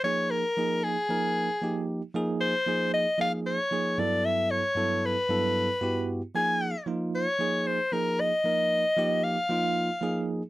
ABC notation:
X:1
M:4/4
L:1/8
Q:1/4=114
K:Ebmix
V:1 name="Soprano saxophone"
d B2 A4 z | z c2 e f d2 =d | =e d2 =B4 z | a2 z d2 c B e- |
e3 f4 z |]
V:2 name="Tine electric piano"
[F,B,EA] z [F,B,EA] z [F,B,EB] z [F,B,EG] z | [F,B,EA] z [F,B,EA] z [F,B,EA] z [F,B,EA] [G,,^F,=B,=E=A]- | [G,,^F,=B,=E=A] z [G,,F,B,EA] z [G,,F,B,EA] z [G,,B,E^FG] z | [F,B,EA] z [F,B,EF] z [F,B,EA] z [F,B,EA] z |
[F,B,EB] z [F,B,EG] z [F,B,EF] z [F,B,EA] z |]